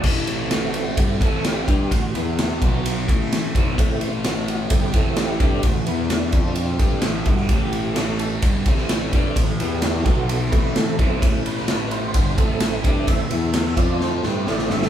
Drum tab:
CC |x---------------|----------------|----------------|----------------|
RD |--x-x-x-x-x-x-x-|x-x-x-x-x-x-x-x-|x-x-x-x-x-x-x-x-|x-x-x-x-x-x-x-x-|
SD |----o-------o---|----o-------oo--|----o-------o---|----o-------o--o|
BD |o-------o-o---o-|o-----o---o---o-|o-------o-o---o-|o-----o---o---o-|

CC |----------------|----------------|----------------|----------------|
RD |x-x-x-x-x-x-x-x-|x-x-x-x-x-x-x-x-|x-x-x-x-x-x-x-x-|x-x-x-x---------|
SD |----o------oo---|----o-o-----o---|---oo-------o---|----o-o-o-o-oooo|
BD |o-------o-o---o-|o-----o---o---o-|o-------o-o---o-|o-----o---------|